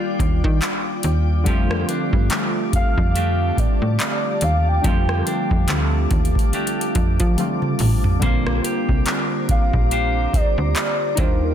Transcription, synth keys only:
Already playing: G3 A#3 D4 F4
1.44 D3 G3 A3
1.49 C4 F4
4.82 D3 G3 A3
4.86 C4 F4
7.37 D3 G3 A3 C4 F4
8.20 D3 G3 A#3
8.24 C4 F4
11.15 G3 A#3 D#4
11.20 D4 F4

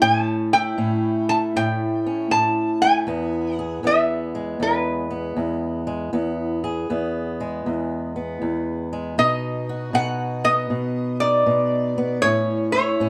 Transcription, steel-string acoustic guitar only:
Already playing: E4
0.02 A2 C#4
0.53 E4
0.78 A2 C#4
1.29 A3
1.56 A2
2.06 C#4
2.31 A2
2.82 A3
3.07 E2 B3
3.59 G#4
3.83 E2 B3
4.35 G#3
4.60 E2
5.11 B3
5.37 E2
5.87 G#3
6.13 E2 B3
6.64 G#4
6.90 E2 B3
7.40 G#3
7.66 E2
8.16 B3
8.42 E2
8.93 G#3
9.18 B2 D#4
9.69 F#4
9.93 B2 D#4
10.44 B3
10.70 B2
11.21 D#4
11.46 B2
11.98 B3
12.23 A2 C#4
12.74 E4
13.00 A2 C#4

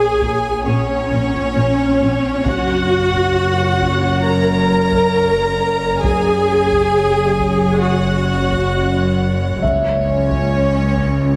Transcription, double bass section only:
0.22 A#1
0.66 A#1
1.11 A#1
1.56 A#1
2.01 A#1
2.46 F#1
6.04 F#1
9.61 C#2

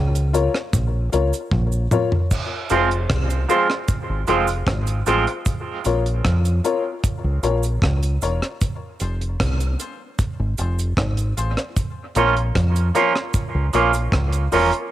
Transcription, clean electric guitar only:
2.70 F3 G#3 C4 F4
3.49 F3 G#3 C4 F4
3.70 muted clean electric guitar stroke
4.28 F3 G#3 C4 F4
5.07 F3 G#3 C4 F4
5.28 muted clean electric guitar stroke
12.16 F3 A#3 C#4 F4
12.95 F3 A#3 C#4 F4
13.15 muted clean electric guitar stroke
13.73 F3 A#3 C#4 F4
14.52 F3 A#3 C#4 F4

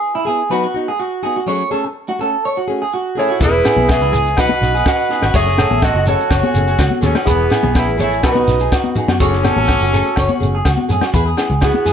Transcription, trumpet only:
3.18 E4
3.44 E4
3.92 G#4
4.40 B4
4.88 B4
5.36 G#4
5.84 F#4
6.09 F#4
7.06 C#4
7.29 B3
7.78 E4
8.02 E4
8.27 D#4
9.22 C#4
11.65 B3

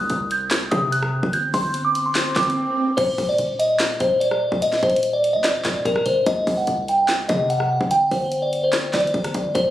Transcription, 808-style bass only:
0.10 C2
0.72 C3
1.23 G1
1.54 G1
2.36 G1
2.98 D#1
3.18 D#1
3.39 D#1
4.01 D#1
4.52 D#1
4.83 D#1
5.34 D#2
5.49 D#1
5.65 D#1
5.85 D#1
6.06 D#1
6.26 C2
6.47 C2
6.68 C2
7.29 C3
7.81 G1
8.11 G1
8.94 G1
9.14 G1
9.35 G1
9.55 D#1

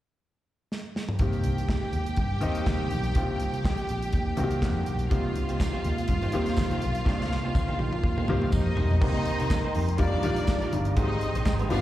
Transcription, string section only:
1.20 G4 G5
5.11 F4 F5
8.52 D#4 D#5
9.01 D#4 D#5
9.99 D4 D5
10.98 D#4 D#5
11.70 F4 F5

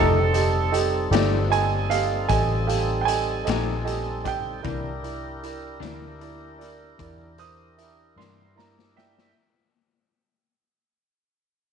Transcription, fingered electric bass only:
Already playing: F1
1.11 G1
2.30 A1
3.48 A#1
4.64 C2
5.80 D2
6.99 E2
8.16 G2

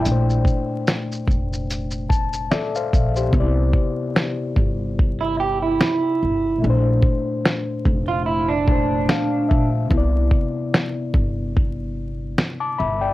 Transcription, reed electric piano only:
Already playing: D5 G5
0.00 A#2 A3
0.08 D4 C5
2.10 A5
2.51 A4 D5 E5
2.76 C5 F5
3.16 G4 C5
3.29 C3 B3
3.37 E4 D5
6.58 A#2 A3
6.66 D4 C5
8.66 A#2 A3 D4 A5
8.72 C5
9.11 F5
9.49 E5
9.86 C3 B3
9.94 E4 D5
12.61 A5 D6
12.79 E5 B5
13.01 D5 G5

